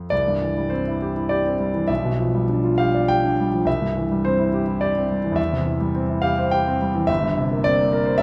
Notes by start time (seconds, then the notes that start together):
0.10 C2 D5
0.27 G2
0.42 E3
0.58 G3
0.70 C4 C5
0.87 E4
1.02 G4
1.16 E4
1.29 G4 D5
1.46 C4
1.60 G3
1.74 E3
1.88 B1 E5
2.05 B2
2.19 F3
2.34 G3
2.49 D4
2.64 F4
2.78 G4 F5
2.94 D5
3.08 G4 G5
3.25 D4
3.40 G3
3.54 F3
3.65 C2 E5
3.82 G2
3.97 E3
4.11 G3
4.25 C4 C5
4.39 E4
4.54 G4
4.68 E4
4.81 G4 D5
4.97 C4
5.11 G3
5.24 E3
5.32 E2 E5
5.53 C3
5.66 E3
5.80 G3
5.95 C4
6.09 E4
6.22 G4 F5
6.38 C5
6.51 G4 G5
6.68 C4
6.82 G3
6.95 E3
7.07 G1 E5
7.22 G2
7.37 C3
7.51 A#3
7.64 C4 D5
7.78 A#3
7.93 A#4
8.05 C5
8.18 A#4 E5